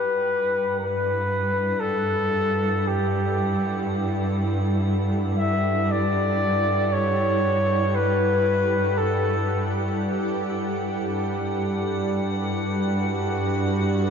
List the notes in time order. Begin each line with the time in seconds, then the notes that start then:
Already playing: G2 G3 E4 A4 B4 F#5
0.17 G4
0.79 B4
1.80 A4
2.87 G4
5.38 E5
5.91 D5
6.93 C#5
7.95 B4
8.98 A4
10.01 G4
11.03 G2 G3 D4 F#5
11.43 B4
11.50 F#4
12.48 F#5
12.56 D4